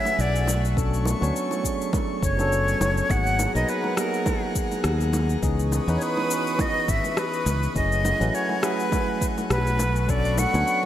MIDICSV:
0, 0, Header, 1, 6, 480
1, 0, Start_track
1, 0, Tempo, 582524
1, 634, Time_signature, 4, 2, 24, 8
1, 8945, End_track
2, 0, Start_track
2, 0, Title_t, "Analog synth pad"
2, 0, Program_c, 0, 89
2, 0, Note_on_c, 0, 57, 80
2, 0, Note_on_c, 0, 78, 72
2, 0, Note_on_c, 0, 80, 67
2, 0, Note_on_c, 0, 88, 80
2, 375, Note_off_c, 0, 80, 0
2, 376, Note_off_c, 0, 88, 0
2, 377, Note_off_c, 0, 78, 0
2, 399, Note_on_c, 0, 85, 81
2, 2522, Note_off_c, 0, 57, 0
2, 2535, Note_off_c, 0, 85, 0
2, 2553, Note_on_c, 0, 82, 70
2, 2554, Note_on_c, 0, 68, 80
2, 2557, Note_on_c, 0, 78, 66
2, 4454, Note_off_c, 0, 68, 0
2, 4454, Note_off_c, 0, 82, 0
2, 4456, Note_off_c, 0, 78, 0
2, 4469, Note_on_c, 0, 85, 71
2, 4469, Note_on_c, 0, 87, 89
2, 4470, Note_on_c, 0, 71, 75
2, 6372, Note_off_c, 0, 85, 0
2, 6372, Note_off_c, 0, 87, 0
2, 6373, Note_off_c, 0, 71, 0
2, 6394, Note_on_c, 0, 57, 75
2, 6395, Note_on_c, 0, 80, 69
2, 6396, Note_on_c, 0, 78, 73
2, 8057, Note_off_c, 0, 80, 0
2, 8058, Note_off_c, 0, 78, 0
2, 8068, Note_on_c, 0, 85, 83
2, 8070, Note_on_c, 0, 83, 70
2, 8945, Note_off_c, 0, 57, 0
2, 8945, Note_off_c, 0, 83, 0
2, 8945, Note_off_c, 0, 85, 0
2, 8945, End_track
3, 0, Start_track
3, 0, Title_t, "Flute"
3, 0, Program_c, 1, 73
3, 0, Note_on_c, 1, 76, 97
3, 171, Note_on_c, 1, 74, 87
3, 184, Note_off_c, 1, 76, 0
3, 536, Note_off_c, 1, 74, 0
3, 1837, Note_on_c, 1, 73, 92
3, 2561, Note_on_c, 1, 78, 100
3, 2574, Note_off_c, 1, 73, 0
3, 2925, Note_off_c, 1, 78, 0
3, 2930, Note_on_c, 1, 75, 81
3, 3044, Note_on_c, 1, 71, 77
3, 3056, Note_off_c, 1, 75, 0
3, 3279, Note_off_c, 1, 71, 0
3, 3284, Note_on_c, 1, 70, 73
3, 3726, Note_off_c, 1, 70, 0
3, 4911, Note_on_c, 1, 73, 52
3, 4968, Note_on_c, 1, 71, 79
3, 4980, Note_off_c, 1, 73, 0
3, 5444, Note_on_c, 1, 75, 94
3, 5457, Note_off_c, 1, 71, 0
3, 5685, Note_on_c, 1, 76, 82
3, 5697, Note_off_c, 1, 75, 0
3, 5920, Note_on_c, 1, 71, 84
3, 5932, Note_off_c, 1, 76, 0
3, 6393, Note_off_c, 1, 71, 0
3, 6398, Note_on_c, 1, 75, 91
3, 6878, Note_on_c, 1, 73, 85
3, 6890, Note_off_c, 1, 75, 0
3, 7112, Note_on_c, 1, 71, 89
3, 7124, Note_off_c, 1, 73, 0
3, 7630, Note_off_c, 1, 71, 0
3, 7835, Note_on_c, 1, 71, 97
3, 8322, Note_on_c, 1, 74, 101
3, 8335, Note_off_c, 1, 71, 0
3, 8557, Note_on_c, 1, 78, 105
3, 8570, Note_off_c, 1, 74, 0
3, 8945, Note_off_c, 1, 78, 0
3, 8945, End_track
4, 0, Start_track
4, 0, Title_t, "Tine electric piano"
4, 0, Program_c, 2, 4
4, 0, Control_c, 2, 64, 127
4, 0, Note_on_c, 2, 54, 67
4, 0, Note_on_c, 2, 57, 61
4, 0, Note_on_c, 2, 61, 65
4, 0, Note_on_c, 2, 64, 59
4, 0, Note_on_c, 2, 68, 80
4, 0, Note_on_c, 2, 71, 87
4, 372, Note_off_c, 2, 54, 0
4, 376, Note_off_c, 2, 57, 0
4, 379, Note_off_c, 2, 61, 0
4, 385, Note_off_c, 2, 64, 0
4, 389, Note_off_c, 2, 68, 0
4, 403, Control_c, 2, 64, 0
4, 409, Note_off_c, 2, 71, 0
4, 571, Control_c, 2, 64, 127
4, 623, Note_on_c, 2, 54, 75
4, 630, Note_on_c, 2, 59, 69
4, 632, Note_on_c, 2, 61, 74
4, 636, Note_on_c, 2, 62, 70
4, 640, Note_on_c, 2, 69, 84
4, 969, Note_off_c, 2, 54, 0
4, 973, Note_off_c, 2, 59, 0
4, 974, Note_off_c, 2, 61, 0
4, 976, Note_off_c, 2, 62, 0
4, 978, Note_off_c, 2, 69, 0
4, 994, Note_on_c, 2, 54, 84
4, 1000, Note_on_c, 2, 59, 81
4, 1004, Note_on_c, 2, 61, 83
4, 1008, Note_on_c, 2, 62, 79
4, 1012, Note_on_c, 2, 73, 94
4, 1322, Note_off_c, 2, 54, 0
4, 1324, Note_off_c, 2, 59, 0
4, 1326, Note_off_c, 2, 61, 0
4, 1328, Note_off_c, 2, 62, 0
4, 1330, Note_on_c, 2, 54, 60
4, 1331, Note_off_c, 2, 73, 0
4, 1340, Note_on_c, 2, 59, 55
4, 1349, Note_on_c, 2, 61, 59
4, 1356, Note_on_c, 2, 62, 54
4, 1365, Note_on_c, 2, 68, 64
4, 1928, Note_off_c, 2, 54, 0
4, 1933, Note_off_c, 2, 59, 0
4, 1938, Note_off_c, 2, 61, 0
4, 1942, Note_off_c, 2, 62, 0
4, 1946, Note_off_c, 2, 68, 0
4, 1950, Note_on_c, 2, 54, 82
4, 1958, Note_on_c, 2, 59, 75
4, 1968, Note_on_c, 2, 61, 73
4, 1976, Note_on_c, 2, 62, 74
4, 1984, Note_on_c, 2, 69, 87
4, 2520, Note_off_c, 2, 54, 0
4, 2523, Note_off_c, 2, 59, 0
4, 2528, Note_off_c, 2, 61, 0
4, 2532, Note_off_c, 2, 62, 0
4, 2536, Note_off_c, 2, 69, 0
4, 2546, Note_on_c, 2, 54, 65
4, 2551, Note_on_c, 2, 58, 56
4, 2554, Note_on_c, 2, 59, 58
4, 2558, Note_on_c, 2, 63, 63
4, 2562, Note_on_c, 2, 68, 72
4, 2566, Control_c, 2, 64, 0
4, 2709, Control_c, 2, 64, 127
4, 2891, Note_off_c, 2, 54, 0
4, 2893, Note_off_c, 2, 58, 0
4, 2895, Note_off_c, 2, 59, 0
4, 2897, Note_off_c, 2, 63, 0
4, 2899, Note_off_c, 2, 68, 0
4, 2919, Note_on_c, 2, 54, 79
4, 2922, Note_on_c, 2, 70, 69
4, 2927, Note_on_c, 2, 59, 77
4, 2930, Note_on_c, 2, 63, 78
4, 2936, Note_on_c, 2, 71, 88
4, 3244, Note_off_c, 2, 54, 0
4, 3246, Note_off_c, 2, 70, 0
4, 3248, Note_off_c, 2, 59, 0
4, 3250, Note_off_c, 2, 63, 0
4, 3252, Note_off_c, 2, 71, 0
4, 3260, Note_on_c, 2, 54, 71
4, 3268, Note_on_c, 2, 58, 59
4, 3276, Note_on_c, 2, 59, 67
4, 3284, Note_on_c, 2, 63, 67
4, 3293, Note_on_c, 2, 68, 77
4, 4441, Note_off_c, 2, 54, 0
4, 4445, Note_off_c, 2, 58, 0
4, 4449, Note_off_c, 2, 59, 0
4, 4453, Note_off_c, 2, 63, 0
4, 4457, Note_off_c, 2, 68, 0
4, 4466, Note_on_c, 2, 52, 75
4, 4470, Note_on_c, 2, 59, 75
4, 4475, Note_on_c, 2, 61, 71
4, 4479, Note_on_c, 2, 63, 70
4, 4483, Note_on_c, 2, 68, 84
4, 4485, Control_c, 2, 64, 0
4, 4654, Control_c, 2, 64, 127
4, 4811, Note_off_c, 2, 52, 0
4, 4813, Note_off_c, 2, 59, 0
4, 4815, Note_off_c, 2, 61, 0
4, 4817, Note_off_c, 2, 63, 0
4, 4819, Note_off_c, 2, 68, 0
4, 4841, Note_on_c, 2, 52, 86
4, 4843, Note_on_c, 2, 59, 84
4, 4848, Note_on_c, 2, 61, 80
4, 4853, Note_on_c, 2, 63, 84
4, 4857, Note_on_c, 2, 71, 100
4, 5165, Note_off_c, 2, 52, 0
4, 5166, Note_off_c, 2, 59, 0
4, 5169, Note_off_c, 2, 61, 0
4, 5171, Note_off_c, 2, 63, 0
4, 5173, Note_off_c, 2, 71, 0
4, 5181, Note_on_c, 2, 52, 64
4, 5189, Note_on_c, 2, 59, 60
4, 5197, Note_on_c, 2, 61, 57
4, 5206, Note_on_c, 2, 63, 55
4, 5216, Note_on_c, 2, 66, 69
4, 6361, Note_off_c, 2, 52, 0
4, 6366, Note_off_c, 2, 59, 0
4, 6370, Note_off_c, 2, 61, 0
4, 6374, Note_off_c, 2, 63, 0
4, 6379, Note_off_c, 2, 66, 0
4, 6384, Note_on_c, 2, 54, 65
4, 6390, Note_on_c, 2, 57, 61
4, 6392, Note_on_c, 2, 61, 60
4, 6398, Note_on_c, 2, 64, 59
4, 6401, Note_on_c, 2, 68, 69
4, 6403, Control_c, 2, 64, 0
4, 6566, Control_c, 2, 64, 127
4, 6730, Note_off_c, 2, 54, 0
4, 6733, Note_off_c, 2, 57, 0
4, 6734, Note_off_c, 2, 61, 0
4, 6737, Note_off_c, 2, 64, 0
4, 6739, Note_off_c, 2, 68, 0
4, 6758, Note_on_c, 2, 54, 84
4, 6761, Note_on_c, 2, 57, 78
4, 6764, Note_on_c, 2, 61, 79
4, 6768, Note_on_c, 2, 64, 75
4, 6775, Note_on_c, 2, 71, 91
4, 7084, Note_off_c, 2, 54, 0
4, 7085, Note_off_c, 2, 57, 0
4, 7087, Note_off_c, 2, 61, 0
4, 7089, Note_off_c, 2, 64, 0
4, 7092, Note_off_c, 2, 71, 0
4, 7096, Note_on_c, 2, 54, 75
4, 7104, Note_on_c, 2, 57, 66
4, 7113, Note_on_c, 2, 61, 61
4, 7121, Note_on_c, 2, 64, 64
4, 7130, Note_on_c, 2, 68, 82
4, 8052, Note_off_c, 2, 54, 0
4, 8056, Note_off_c, 2, 57, 0
4, 8060, Note_off_c, 2, 61, 0
4, 8064, Note_off_c, 2, 64, 0
4, 8069, Note_off_c, 2, 68, 0
4, 8085, Control_c, 2, 64, 0
4, 8249, Control_c, 2, 64, 127
4, 8300, Note_on_c, 2, 54, 77
4, 8304, Note_on_c, 2, 59, 70
4, 8309, Note_on_c, 2, 61, 71
4, 8313, Note_on_c, 2, 62, 73
4, 8316, Note_on_c, 2, 69, 83
4, 8648, Note_off_c, 2, 54, 0
4, 8650, Note_off_c, 2, 59, 0
4, 8652, Note_off_c, 2, 61, 0
4, 8655, Note_off_c, 2, 62, 0
4, 8656, Note_off_c, 2, 69, 0
4, 8679, Note_on_c, 2, 54, 88
4, 8682, Note_on_c, 2, 59, 83
4, 8687, Note_on_c, 2, 61, 80
4, 8691, Note_on_c, 2, 62, 83
4, 8695, Note_on_c, 2, 73, 97
4, 8945, Note_off_c, 2, 54, 0
4, 8945, Note_off_c, 2, 59, 0
4, 8945, Note_off_c, 2, 61, 0
4, 8945, Note_off_c, 2, 62, 0
4, 8945, Note_off_c, 2, 73, 0
4, 8945, End_track
5, 0, Start_track
5, 0, Title_t, "Fingered electric bass"
5, 0, Program_c, 3, 33
5, 154, Note_on_c, 3, 35, 86
5, 930, Note_off_c, 3, 35, 0
5, 1005, Note_on_c, 3, 38, 95
5, 1074, Note_off_c, 3, 38, 0
5, 1833, Note_on_c, 3, 30, 76
5, 2252, Note_off_c, 3, 30, 0
5, 2315, Note_on_c, 3, 30, 91
5, 2478, Note_off_c, 3, 30, 0
5, 2553, Note_on_c, 3, 32, 82
5, 2850, Note_off_c, 3, 32, 0
5, 2926, Note_on_c, 3, 35, 89
5, 2995, Note_off_c, 3, 35, 0
5, 3992, Note_on_c, 3, 39, 87
5, 4411, Note_off_c, 3, 39, 0
5, 4471, Note_on_c, 3, 37, 85
5, 4769, Note_off_c, 3, 37, 0
5, 4843, Note_on_c, 3, 40, 93
5, 4913, Note_off_c, 3, 40, 0
5, 5671, Note_on_c, 3, 32, 67
5, 5758, Note_off_c, 3, 32, 0
5, 6149, Note_on_c, 3, 37, 95
5, 6314, Note_off_c, 3, 37, 0
5, 6392, Note_on_c, 3, 30, 90
5, 6689, Note_off_c, 3, 30, 0
5, 6764, Note_on_c, 3, 33, 101
5, 6834, Note_off_c, 3, 33, 0
5, 7831, Note_on_c, 3, 35, 90
5, 8609, Note_off_c, 3, 35, 0
5, 8685, Note_on_c, 3, 38, 97
5, 8754, Note_off_c, 3, 38, 0
5, 8945, End_track
6, 0, Start_track
6, 0, Title_t, "Drums"
6, 44, Note_on_c, 9, 60, 59
6, 52, Note_on_c, 9, 69, 30
6, 126, Note_off_c, 9, 60, 0
6, 135, Note_off_c, 9, 69, 0
6, 160, Note_on_c, 9, 69, 41
6, 242, Note_off_c, 9, 69, 0
6, 294, Note_on_c, 9, 69, 30
6, 376, Note_off_c, 9, 69, 0
6, 391, Note_on_c, 9, 60, 85
6, 400, Note_on_c, 9, 69, 67
6, 474, Note_off_c, 9, 60, 0
6, 483, Note_off_c, 9, 69, 0
6, 535, Note_on_c, 9, 69, 30
6, 618, Note_off_c, 9, 69, 0
6, 634, Note_on_c, 9, 36, 108
6, 644, Note_on_c, 9, 69, 38
6, 716, Note_off_c, 9, 36, 0
6, 726, Note_off_c, 9, 69, 0
6, 773, Note_on_c, 9, 69, 26
6, 855, Note_off_c, 9, 69, 0
6, 869, Note_on_c, 9, 60, 81
6, 883, Note_on_c, 9, 69, 71
6, 951, Note_off_c, 9, 60, 0
6, 966, Note_off_c, 9, 69, 0
6, 1016, Note_on_c, 9, 69, 32
6, 1098, Note_off_c, 9, 69, 0
6, 1122, Note_on_c, 9, 69, 38
6, 1204, Note_off_c, 9, 69, 0
6, 1245, Note_on_c, 9, 60, 58
6, 1255, Note_on_c, 9, 69, 29
6, 1327, Note_off_c, 9, 60, 0
6, 1338, Note_off_c, 9, 69, 0
6, 1354, Note_on_c, 9, 36, 54
6, 1361, Note_on_c, 9, 69, 74
6, 1437, Note_off_c, 9, 36, 0
6, 1444, Note_off_c, 9, 69, 0
6, 1496, Note_on_c, 9, 69, 30
6, 1578, Note_off_c, 9, 69, 0
6, 1590, Note_on_c, 9, 60, 87
6, 1594, Note_on_c, 9, 36, 113
6, 1601, Note_on_c, 9, 69, 39
6, 1673, Note_off_c, 9, 60, 0
6, 1676, Note_off_c, 9, 36, 0
6, 1684, Note_off_c, 9, 69, 0
6, 1833, Note_on_c, 9, 36, 102
6, 1840, Note_on_c, 9, 69, 67
6, 1916, Note_off_c, 9, 36, 0
6, 1922, Note_off_c, 9, 69, 0
6, 1969, Note_on_c, 9, 60, 54
6, 1973, Note_on_c, 9, 69, 29
6, 2051, Note_off_c, 9, 60, 0
6, 2056, Note_off_c, 9, 69, 0
6, 2079, Note_on_c, 9, 69, 42
6, 2162, Note_off_c, 9, 69, 0
6, 2211, Note_on_c, 9, 69, 30
6, 2293, Note_off_c, 9, 69, 0
6, 2315, Note_on_c, 9, 60, 89
6, 2317, Note_on_c, 9, 69, 73
6, 2397, Note_off_c, 9, 60, 0
6, 2400, Note_off_c, 9, 69, 0
6, 2451, Note_on_c, 9, 69, 29
6, 2534, Note_off_c, 9, 69, 0
6, 2553, Note_on_c, 9, 36, 108
6, 2557, Note_on_c, 9, 69, 38
6, 2635, Note_off_c, 9, 36, 0
6, 2639, Note_off_c, 9, 69, 0
6, 2692, Note_on_c, 9, 69, 28
6, 2774, Note_off_c, 9, 69, 0
6, 2794, Note_on_c, 9, 60, 72
6, 2796, Note_on_c, 9, 69, 68
6, 2877, Note_off_c, 9, 60, 0
6, 2878, Note_off_c, 9, 69, 0
6, 2931, Note_on_c, 9, 69, 31
6, 3014, Note_off_c, 9, 69, 0
6, 3035, Note_on_c, 9, 69, 39
6, 3117, Note_off_c, 9, 69, 0
6, 3162, Note_on_c, 9, 60, 62
6, 3245, Note_off_c, 9, 60, 0
6, 3273, Note_on_c, 9, 37, 65
6, 3277, Note_on_c, 9, 69, 72
6, 3355, Note_off_c, 9, 37, 0
6, 3359, Note_off_c, 9, 69, 0
6, 3410, Note_on_c, 9, 69, 29
6, 3492, Note_off_c, 9, 69, 0
6, 3510, Note_on_c, 9, 60, 78
6, 3513, Note_on_c, 9, 36, 104
6, 3516, Note_on_c, 9, 69, 40
6, 3592, Note_off_c, 9, 60, 0
6, 3595, Note_off_c, 9, 36, 0
6, 3598, Note_off_c, 9, 69, 0
6, 3753, Note_on_c, 9, 36, 93
6, 3753, Note_on_c, 9, 69, 67
6, 3835, Note_off_c, 9, 36, 0
6, 3836, Note_off_c, 9, 69, 0
6, 3884, Note_on_c, 9, 60, 55
6, 3886, Note_on_c, 9, 69, 28
6, 3966, Note_off_c, 9, 60, 0
6, 3969, Note_off_c, 9, 69, 0
6, 3987, Note_on_c, 9, 37, 68
6, 3991, Note_on_c, 9, 69, 40
6, 4069, Note_off_c, 9, 37, 0
6, 4073, Note_off_c, 9, 69, 0
6, 4125, Note_on_c, 9, 69, 30
6, 4208, Note_off_c, 9, 69, 0
6, 4229, Note_on_c, 9, 60, 80
6, 4231, Note_on_c, 9, 69, 67
6, 4312, Note_off_c, 9, 60, 0
6, 4313, Note_off_c, 9, 69, 0
6, 4364, Note_on_c, 9, 69, 29
6, 4446, Note_off_c, 9, 69, 0
6, 4472, Note_on_c, 9, 36, 95
6, 4473, Note_on_c, 9, 69, 40
6, 4555, Note_off_c, 9, 36, 0
6, 4555, Note_off_c, 9, 69, 0
6, 4610, Note_on_c, 9, 69, 27
6, 4693, Note_off_c, 9, 69, 0
6, 4714, Note_on_c, 9, 60, 73
6, 4716, Note_on_c, 9, 69, 63
6, 4797, Note_off_c, 9, 60, 0
6, 4798, Note_off_c, 9, 69, 0
6, 4849, Note_on_c, 9, 69, 29
6, 4931, Note_off_c, 9, 69, 0
6, 4955, Note_on_c, 9, 69, 36
6, 5037, Note_off_c, 9, 69, 0
6, 5085, Note_on_c, 9, 60, 60
6, 5168, Note_off_c, 9, 60, 0
6, 5196, Note_on_c, 9, 69, 72
6, 5278, Note_off_c, 9, 69, 0
6, 5331, Note_on_c, 9, 69, 29
6, 5413, Note_off_c, 9, 69, 0
6, 5428, Note_on_c, 9, 60, 83
6, 5432, Note_on_c, 9, 36, 106
6, 5435, Note_on_c, 9, 69, 39
6, 5510, Note_off_c, 9, 60, 0
6, 5514, Note_off_c, 9, 36, 0
6, 5517, Note_off_c, 9, 69, 0
6, 5672, Note_on_c, 9, 36, 94
6, 5674, Note_on_c, 9, 69, 63
6, 5754, Note_off_c, 9, 36, 0
6, 5756, Note_off_c, 9, 69, 0
6, 5802, Note_on_c, 9, 60, 56
6, 5806, Note_on_c, 9, 69, 28
6, 5884, Note_off_c, 9, 60, 0
6, 5888, Note_off_c, 9, 69, 0
6, 5908, Note_on_c, 9, 37, 68
6, 5912, Note_on_c, 9, 69, 39
6, 5991, Note_off_c, 9, 37, 0
6, 5995, Note_off_c, 9, 69, 0
6, 6044, Note_on_c, 9, 69, 28
6, 6126, Note_off_c, 9, 69, 0
6, 6148, Note_on_c, 9, 60, 75
6, 6151, Note_on_c, 9, 69, 63
6, 6231, Note_off_c, 9, 60, 0
6, 6233, Note_off_c, 9, 69, 0
6, 6286, Note_on_c, 9, 69, 28
6, 6369, Note_off_c, 9, 69, 0
6, 6392, Note_on_c, 9, 36, 98
6, 6393, Note_on_c, 9, 69, 39
6, 6474, Note_off_c, 9, 36, 0
6, 6475, Note_off_c, 9, 69, 0
6, 6528, Note_on_c, 9, 69, 27
6, 6610, Note_off_c, 9, 69, 0
6, 6631, Note_on_c, 9, 60, 83
6, 6634, Note_on_c, 9, 69, 63
6, 6714, Note_off_c, 9, 60, 0
6, 6717, Note_off_c, 9, 69, 0
6, 6769, Note_on_c, 9, 69, 28
6, 6852, Note_off_c, 9, 69, 0
6, 6877, Note_on_c, 9, 69, 39
6, 6959, Note_off_c, 9, 69, 0
6, 6997, Note_on_c, 9, 60, 58
6, 7080, Note_off_c, 9, 60, 0
6, 7110, Note_on_c, 9, 37, 70
6, 7114, Note_on_c, 9, 69, 67
6, 7193, Note_off_c, 9, 37, 0
6, 7196, Note_off_c, 9, 69, 0
6, 7248, Note_on_c, 9, 69, 26
6, 7330, Note_off_c, 9, 69, 0
6, 7349, Note_on_c, 9, 60, 73
6, 7352, Note_on_c, 9, 36, 103
6, 7356, Note_on_c, 9, 69, 38
6, 7432, Note_off_c, 9, 60, 0
6, 7435, Note_off_c, 9, 36, 0
6, 7438, Note_off_c, 9, 69, 0
6, 7592, Note_on_c, 9, 36, 95
6, 7595, Note_on_c, 9, 69, 63
6, 7675, Note_off_c, 9, 36, 0
6, 7678, Note_off_c, 9, 69, 0
6, 7727, Note_on_c, 9, 60, 59
6, 7728, Note_on_c, 9, 69, 26
6, 7810, Note_off_c, 9, 60, 0
6, 7810, Note_off_c, 9, 69, 0
6, 7831, Note_on_c, 9, 37, 68
6, 7835, Note_on_c, 9, 69, 36
6, 7914, Note_off_c, 9, 37, 0
6, 7917, Note_off_c, 9, 69, 0
6, 7967, Note_on_c, 9, 69, 27
6, 8050, Note_off_c, 9, 69, 0
6, 8069, Note_on_c, 9, 60, 81
6, 8071, Note_on_c, 9, 69, 68
6, 8151, Note_off_c, 9, 60, 0
6, 8154, Note_off_c, 9, 69, 0
6, 8207, Note_on_c, 9, 69, 28
6, 8289, Note_off_c, 9, 69, 0
6, 8312, Note_on_c, 9, 36, 104
6, 8312, Note_on_c, 9, 69, 38
6, 8395, Note_off_c, 9, 36, 0
6, 8395, Note_off_c, 9, 69, 0
6, 8445, Note_on_c, 9, 69, 28
6, 8528, Note_off_c, 9, 69, 0
6, 8551, Note_on_c, 9, 60, 80
6, 8553, Note_on_c, 9, 69, 68
6, 8634, Note_off_c, 9, 60, 0
6, 8635, Note_off_c, 9, 69, 0
6, 8688, Note_on_c, 9, 69, 29
6, 8771, Note_off_c, 9, 69, 0
6, 8796, Note_on_c, 9, 69, 40
6, 8878, Note_off_c, 9, 69, 0
6, 8945, End_track
0, 0, End_of_file